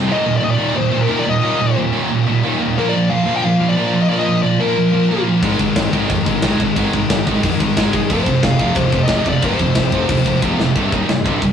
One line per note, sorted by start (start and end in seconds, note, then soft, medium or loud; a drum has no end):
0.09 0.16 D#2 medium
0.09 0.17 A#2 medium
0.09 0.25 D#3 loud
0.09 2.74 D#3 medium
0.09 2.75 A#3 medium
0.09 2.74 F4 medium
0.09 0.36 D#5 loud
0.17 0.25 D#2 medium
0.17 0.25 A#2 medium
0.25 0.31 D#2 medium
0.25 0.33 A#2 medium
0.32 0.40 D#2 medium
0.32 0.40 A#2 medium
0.37 0.48 D#2 medium
0.37 0.48 A#2 medium
0.37 0.43 D5 loud
0.43 0.50 D#5 loud
0.48 0.55 D#2 medium
0.48 0.55 A#2 medium
0.48 0.76 D5 loud
0.55 0.63 D#2 medium
0.55 0.63 A#2 medium
0.55 0.75 D#3 loud
0.63 0.71 D#2 medium
0.63 0.71 A#2 medium
0.71 0.78 D#2 medium
0.71 0.79 A#2 medium
0.77 0.86 D#2 medium
0.77 0.87 A#2 medium
0.77 1.02 C5 medium
0.87 0.95 D#2 medium
0.87 0.95 A#2 medium
0.91 1.08 D#3 medium
0.95 1.03 D#2 medium
0.95 1.03 A#2 medium
1.01 1.10 D#2 medium
1.01 1.11 A#2 medium
1.01 1.10 A#4 medium
1.08 1.18 D#2 medium
1.08 1.18 A#2 medium
1.08 1.25 D#3 loud
1.08 1.19 A#4 medium
1.18 1.25 D#2 medium
1.18 1.26 A#2 medium
1.18 1.29 D5 medium
1.26 1.33 D#2 medium
1.26 1.34 A#2 medium
1.26 1.78 D#5 medium
1.34 1.42 D#2 medium
1.34 1.42 A#2 medium
1.43 1.51 D#2 medium
1.43 1.51 A#2 medium
1.43 1.59 D#3 loud
1.51 1.58 D#2 medium
1.51 1.59 A#2 medium
1.58 1.66 D#2 medium
1.58 1.67 A#2 medium
1.67 1.74 D#2 medium
1.67 1.74 A#2 medium
1.74 1.82 D#2 medium
1.74 1.82 A#2 medium
1.83 1.89 D#2 medium
1.83 1.90 A#2 medium
1.90 1.98 D#2 medium
1.90 1.98 A#2 medium
1.90 2.09 D#3 loud
1.99 2.06 D#2 medium
1.99 2.06 A#2 medium
2.06 2.14 D#2 medium
2.06 2.12 A#2 medium
2.13 2.21 D#2 medium
2.13 2.20 A#2 medium
2.21 2.28 D#2 medium
2.21 2.30 A#2 medium
2.26 2.36 D#2 medium
2.26 2.42 D#3 medium
2.30 2.36 A#2 medium
2.36 2.45 D#2 medium
2.36 2.44 A#2 medium
2.44 2.53 D#2 medium
2.44 2.52 A#2 medium
2.44 2.60 D#3 loud
2.52 2.60 D#2 medium
2.52 2.59 A#2 medium
2.59 2.69 D#2 medium
2.59 2.67 A#2 medium
2.67 2.76 D#2 medium
2.67 2.75 A#2 medium
2.77 2.84 A#2 medium
2.77 2.83 F3 medium
2.77 2.94 A#3 medium
2.77 5.43 A#3 medium
2.77 5.43 F4 medium
2.77 2.86 A#4 medium
2.77 5.43 C5 medium
2.84 2.92 A#2 medium
2.84 2.92 F3 medium
2.89 2.99 A#2 medium
2.89 3.00 F3 medium
2.89 3.13 D5 medium
3.00 3.07 A#2 medium
3.00 3.08 F3 medium
3.07 3.15 A#2 medium
3.07 3.17 F3 medium
3.07 3.36 F5 loud
3.16 3.23 A#2 medium
3.16 3.23 F3 medium
3.24 3.32 A#2 medium
3.24 3.31 F3 medium
3.24 3.43 A#3 loud
3.31 3.39 A#2 medium
3.31 3.39 F3 medium
3.36 3.46 A#2 medium
3.36 3.44 G5 loud
3.40 3.48 F3 medium
3.40 3.70 F5 loud
3.47 3.54 A#2 medium
3.47 3.54 F3 medium
3.55 3.63 A#2 medium
3.55 3.63 F3 medium
3.55 3.75 A#3 medium
3.63 3.70 A#2 medium
3.63 3.71 F3 medium
3.69 3.78 A#2 medium
3.69 3.79 F3 medium
3.69 4.02 D5 medium
3.77 3.85 A#2 medium
3.77 3.86 F3 medium
3.77 3.93 A#3 loud
3.85 3.93 A#2 medium
3.85 3.95 F3 medium
3.95 4.02 A#2 medium
3.95 4.03 F3 medium
4.02 4.10 A#2 medium
4.02 4.11 F3 medium
4.02 4.09 D#5 medium
4.10 4.18 A#2 medium
4.10 4.19 F3 medium
4.10 4.26 A#3 medium
4.10 4.18 D5 medium
4.18 4.26 A#2 medium
4.18 4.27 F3 medium
4.18 4.42 D#5 medium
4.27 4.33 A#2 medium
4.27 4.35 F3 medium
4.34 4.42 A#2 medium
4.34 4.42 F3 medium
4.42 4.50 A#2 medium
4.42 4.50 F3 medium
4.42 4.60 D5 medium
4.50 4.58 A#2 medium
4.50 4.58 F3 medium
4.58 4.65 A#2 medium
4.58 4.66 F3 medium
4.58 4.77 A#3 loud
4.58 5.23 A#4 medium
4.66 4.74 A#2 medium
4.66 4.74 F3 medium
4.74 4.81 A#2 medium
4.74 4.80 F3 medium
4.81 4.89 A#2 medium
4.81 4.89 F3 medium
4.89 4.97 A#2 medium
4.89 4.97 F3 medium
4.89 5.08 A#3 medium
4.93 5.09 A#2 medium
4.93 5.09 F3 medium
4.98 5.05 A#2 medium
4.98 5.05 F3 medium
5.05 5.13 A#2 medium
5.05 5.13 F3 medium
5.11 5.21 A#2 medium
5.11 5.20 F3 medium
5.11 5.27 A#3 loud
5.21 5.29 A#2 medium
5.21 5.29 F3 medium
5.29 5.36 A#2 medium
5.29 5.36 F3 medium
5.36 5.43 A#2 medium
5.36 5.43 F3 medium
5.42 5.53 G#1 medium
5.42 5.50 G#2 medium
5.42 5.50 D#3 medium
5.42 5.60 G#3 medium
5.42 8.09 G#3 medium
5.42 8.08 D#4 medium
5.42 8.09 A#4 medium
5.42 kick loud
5.42 crash medium
5.50 5.58 G#2 medium
5.50 5.58 D#3 medium
5.59 5.70 G#1 medium
5.59 5.66 G#2 medium
5.59 5.67 D#3 medium
5.59 kick medium
5.59 crash medium
5.66 5.73 G#2 medium
5.66 5.74 D#3 medium
5.74 5.87 G#1 medium
5.74 5.82 G#2 medium
5.74 5.82 D#3 medium
5.74 kick loud
5.74 snare loud
5.74 crash medium
5.83 5.89 G#2 medium
5.83 5.91 D#3 medium
5.90 6.03 G#1 medium
5.90 5.97 G#2 medium
5.90 5.98 D#3 medium
5.90 kick medium
5.94 6.04 G#2 medium
5.94 6.10 G#3 loud
5.94 crash medium
5.98 6.05 D#3 medium
6.05 6.12 G#2 medium
6.05 6.13 D#3 medium
6.10 6.20 F2 medium
6.10 6.20 G#2 medium
6.10 6.21 D#3 medium
6.10 kick loud
6.10 crash medium
6.21 6.28 G#2 medium
6.21 6.29 D#3 medium
6.26 6.37 G#1 medium
6.26 6.36 G#2 medium
6.26 6.37 D#3 medium
6.26 6.46 G#3 medium
6.26 kick medium
6.26 crash medium
6.37 6.43 G#2 medium
6.37 6.44 D#3 medium
6.42 6.53 G#1 loud
6.42 6.51 G#2 medium
6.42 6.52 D#3 medium
6.42 6.60 G#3 medium
6.42 kick loud
6.42 snare loud
6.42 crash medium
6.52 6.59 G#2 medium
6.52 6.61 D#3 medium
6.59 6.70 G#1 medium
6.59 6.67 G#2 medium
6.59 6.69 D#3 medium
6.59 kick medium
6.59 crash medium
6.69 6.76 G#2 medium
6.69 6.77 D#3 medium
6.76 6.87 G#1 loud
6.76 6.85 G#2 medium
6.76 6.85 D#3 medium
6.76 6.93 G#3 loud
6.76 kick loud
6.76 crash medium
6.85 6.92 G#2 medium
6.85 6.92 D#3 medium
6.92 7.04 G#1 medium
6.92 7.00 G#2 medium
6.92 7.01 D#3 medium
6.92 kick medium
6.92 crash medium
7.00 7.08 G#2 medium
7.00 7.09 D#3 medium
7.08 7.20 G#1 medium
7.08 7.15 G#2 medium
7.08 7.16 D#3 medium
7.08 kick loud
7.08 snare loud
7.08 crash medium
7.16 7.23 G#2 medium
7.16 7.24 D#3 medium
7.23 7.37 G#1 medium
7.23 7.31 G#2 medium
7.23 7.33 D#3 medium
7.23 kick medium
7.27 7.43 G#3 loud
7.27 crash medium
7.32 7.39 G#2 medium
7.32 7.39 D#3 medium
7.40 7.53 F2 loud
7.40 7.47 G#2 medium
7.40 7.47 D#3 medium
7.40 kick loud
7.40 crash loud
7.47 7.54 G#2 medium
7.47 7.55 D#3 medium
7.54 7.62 G#2 medium
7.54 7.63 D#3 medium
7.59 7.70 G#1 medium
7.59 7.79 G#3 medium
7.59 kick loud
7.59 crash medium
7.64 7.70 G#2 medium
7.64 7.70 D#3 medium
7.70 7.78 G#2 medium
7.70 7.79 D#3 medium
7.77 7.87 G#1 medium
7.77 7.86 G#2 medium
7.77 7.87 D#3 medium
7.77 7.93 G#3 loud
7.77 kick loud
7.77 snare loud
7.77 crash medium
7.87 7.93 G#2 medium
7.87 7.95 D#3 medium
7.93 8.04 G#1 loud
7.93 8.01 G#2 medium
7.93 8.02 D#3 medium
7.93 7.99 G#4 medium
7.93 kick loud
7.93 crash medium
8.02 8.10 G#2 medium
8.02 8.10 D#3 medium
8.10 8.20 F1 loud
8.10 8.16 F2 medium
8.10 8.18 C3 loud
8.10 8.27 F3 loud
8.10 10.75 F3 medium
8.10 10.75 C4 medium
8.10 10.75 G4 medium
8.10 8.41 C5 loud
8.10 kick loud
8.10 crash medium
8.17 8.24 F2 medium
8.17 8.26 C3 medium
8.26 8.37 F1 medium
8.26 8.33 F2 medium
8.26 8.34 C3 medium
8.26 kick medium
8.26 crash medium
8.34 8.41 F2 medium
8.34 8.41 C3 medium
8.41 8.53 F1 medium
8.41 8.49 F2 medium
8.41 8.49 C3 medium
8.41 8.78 F5 loud
8.41 kick loud
8.41 snare loud
8.41 crash medium
8.49 8.57 F2 medium
8.49 8.57 C3 medium
8.57 8.70 F1 medium
8.57 8.63 F2 medium
8.57 8.64 C3 medium
8.57 8.76 F3 loud
8.57 kick medium
8.57 crash medium
8.64 8.72 F2 medium
8.64 8.72 C3 medium
8.72 8.86 D#2 loud
8.72 8.80 F2 medium
8.72 8.81 C3 medium
8.72 kick loud
8.72 crash medium
8.76 8.92 C3 loud
8.76 9.02 C5 loud
8.81 8.88 F2 medium
8.81 8.89 C3 medium
8.88 8.95 F2 medium
8.88 8.96 C3 medium
8.88 crash medium
8.92 9.03 F1 medium
8.92 9.01 F2 medium
8.92 9.09 F3 medium
8.92 kick medium
8.97 9.03 C3 medium
9.02 9.09 F2 medium
9.02 9.11 C3 medium
9.02 9.28 D#5 loud
9.08 9.20 F1 loud
9.08 9.18 F2 medium
9.08 9.25 F3 loud
9.08 kick loud
9.08 snare loud
9.08 crash medium
9.12 9.19 C3 medium
9.12 9.44 F3 loud
9.18 9.26 F2 medium
9.18 9.27 C3 medium
9.25 9.36 F1 loud
9.25 9.33 F2 medium
9.25 9.35 C3 medium
9.25 9.45 D5 medium
9.25 kick medium
9.25 crash medium
9.33 9.41 F2 medium
9.33 9.43 C3 medium
9.42 9.53 F1 loud
9.42 9.51 F2 medium
9.42 9.52 C3 medium
9.42 9.59 F3 loud
9.42 10.41 C5 medium
9.42 kick loud
9.42 crash medium
9.52 9.58 F2 medium
9.52 9.60 C3 medium
9.58 9.70 F1 medium
9.58 9.66 F2 medium
9.58 9.67 C3 medium
9.58 kick medium
9.58 crash medium
9.66 9.74 F2 medium
9.66 9.75 C3 medium
9.75 9.86 F1 medium
9.75 9.82 F2 medium
9.75 9.82 C3 medium
9.75 kick loud
9.75 snare loud
9.75 crash medium
9.82 9.89 F2 medium
9.82 9.90 C3 medium
9.90 10.03 F1 medium
9.90 9.97 F2 medium
9.90 9.98 C3 medium
9.90 kick medium
9.90 crash medium
9.94 10.05 F2 medium
9.94 10.09 F3 loud
9.98 10.05 C3 medium
10.06 10.19 D#2 medium
10.06 10.13 F2 medium
10.06 10.13 C3 medium
10.06 kick loud
10.06 crash medium
10.13 10.21 F2 medium
10.13 10.21 C3 medium
10.21 10.36 F1 medium
10.21 10.29 F2 medium
10.21 10.28 C3 medium
10.21 10.42 F3 medium
10.26 10.37 F2 medium
10.26 10.35 C3 medium
10.26 kick medium
10.26 crash medium
10.36 10.43 F2 medium
10.36 10.43 C3 medium
10.42 10.53 F1 medium
10.42 10.51 F2 medium
10.42 10.52 C3 medium
10.42 10.59 F3 loud
10.42 kick loud
10.42 high tom medium
10.53 10.60 F2 medium
10.53 10.59 C3 medium
10.59 10.70 F1 medium
10.59 10.68 F2 medium
10.59 10.67 C3 medium
10.59 snare medium
10.68 10.76 F2 medium
10.68 10.75 C3 medium
10.75 10.92 C1 loud
10.75 10.92 C2 medium
10.75 10.92 G2 loud
10.75 10.93 C3 loud
10.75 11.53 C3 medium
10.75 11.53 G3 medium
10.75 11.53 D4 medium
10.75 kick loud
10.75 crash medium
10.92 11.07 D#1 medium
10.92 11.09 D#2 medium
10.92 11.09 A#2 medium
10.92 11.10 D#3 loud
10.92 kick loud
11.08 11.24 C1 medium
11.08 11.23 C2 medium
11.08 11.23 G2 medium
11.08 snare loud
11.08 crash medium
11.25 11.42 C1 medium
11.25 11.42 C2 medium
11.25 11.42 G2 medium
11.25 11.43 C3 medium
11.25 kick loud
11.42 11.53 C1 medium
11.42 11.53 C2 medium
11.42 11.53 G2 medium
11.42 kick loud
11.42 crash medium